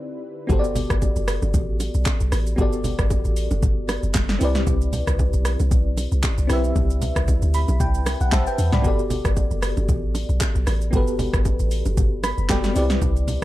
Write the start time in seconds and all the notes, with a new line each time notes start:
Already playing: D3 C4 D#4 E4 G4 B4 D5
0.47 G1 B3 F#4 G4, kick, low conga, shaker
0.52 A4 C5
0.59 D5
0.64 shaker
0.75 open hi-hat, low conga, shaker
0.90 G1, kick, cross-stick, shaker
1.02 kick, high bongo, shaker
1.16 F#1, shaker
1.28 cross-stick, open hi-hat, shaker
1.42 G1, low bongo, shaker
1.54 A1, kick, low conga, shaker
1.80 open hi-hat, low bongo, shaker
1.94 B1, shaker
2.06 kick, clap, high bongo, shaker
2.20 B1, shaker
2.32 A1, cross-stick, open hi-hat, low bongo, shaker
2.47 shaker
2.56 G1 B3 F#4 G4, kick, low conga, shaker
2.60 A4 D5
2.73 shaker
2.84 open hi-hat, low conga, shaker
2.99 G1, kick, cross-stick, shaker
3.10 kick, high bongo, shaker
3.25 A1, shaker
3.36 open hi-hat, shaker
3.51 F#1, low bongo, shaker
3.62 G1, kick, low conga, shaker
3.89 cross-stick, open hi-hat, low bongo, shaker
4.03 F#1, shaker
4.15 F#1, kick, snare, clap, high bongo, shaker
4.29 snare, shaker
4.39 C2 C4 E4 G4, open hi-hat, low bongo, shaker
4.43 B4 D5
4.55 snare, shaker
4.67 C2, kick, low conga, shaker
4.81 shaker
4.93 open hi-hat, low conga, shaker
5.07 C2, kick, cross-stick, shaker
5.19 kick, high bongo, shaker
5.33 B1, shaker
5.45 cross-stick, open hi-hat, shaker
5.60 C2, low bongo, shaker
5.71 B1, kick, low conga, shaker
5.97 open hi-hat, low bongo, shaker
6.12 C2, shaker
6.23 kick, clap, high bongo, shaker
6.38 C2, shaker
6.47 B1 C4 E4 G4, cross-stick, open hi-hat, low bongo, shaker
6.52 B4 E5
6.64 shaker
6.76 C2, kick, low conga, shaker
6.90 shaker
7.02 open hi-hat, low conga, shaker
7.16 C2, kick, cross-stick, shaker
7.28 kick, high bongo, shaker
7.42 D2, shaker
7.54 B5, open hi-hat, shaker
7.68 B1, low bongo, shaker
7.80 C2 G5, kick, low conga, shaker
7.94 shaker
8.06 cross-stick, open hi-hat, low bongo, shaker
8.21 B1 F#5, shaker
8.32 B1 C5 E5 A5, kick, snare, clap, high bongo, shaker
8.47 B4 G5, shaker
8.58 E2, open hi-hat, low bongo, shaker
8.72 C2 D5 B5, snare, mid tom, shaker
8.82 G1 B3 F#4 G4, kick, low conga, shaker
8.86 A4 D5
8.99 shaker
9.10 open hi-hat, low conga, shaker
9.25 G1, kick, cross-stick, shaker
9.37 kick, high bongo, shaker
9.51 F#1, shaker
9.62 cross-stick, open hi-hat, shaker
9.77 G1, low bongo, shaker
9.89 A1, kick, low conga, shaker
10.15 open hi-hat, low bongo, shaker
10.29 B1, shaker
10.41 kick, clap, high bongo, shaker
10.55 B1, shaker
10.67 A1, cross-stick, open hi-hat, low bongo, shaker
10.81 shaker
10.91 G1 B3 F#4 G4, kick, low conga, shaker
10.95 A4 B4
11.08 shaker
11.19 open hi-hat, low conga, shaker
11.33 G1, kick, cross-stick, shaker
11.45 kick, high bongo, shaker
11.60 A1, shaker
11.71 open hi-hat, shaker
11.86 F#1, low bongo, shaker
11.97 G1, kick, low conga, shaker
12.23 B5, cross-stick, open hi-hat, low bongo, shaker
12.38 F#1, shaker
12.49 F#1 B3 F#4 G4 A4 D5 G5, kick, snare, clap, high bongo, shaker
12.64 snare, shaker
12.73 C2 C4 E4 G4 D5, open hi-hat, low bongo, shaker
12.78 B4 D5
12.90 snare, shaker
13.02 C2, kick, low conga, shaker
13.16 shaker
13.28 open hi-hat, low conga, shaker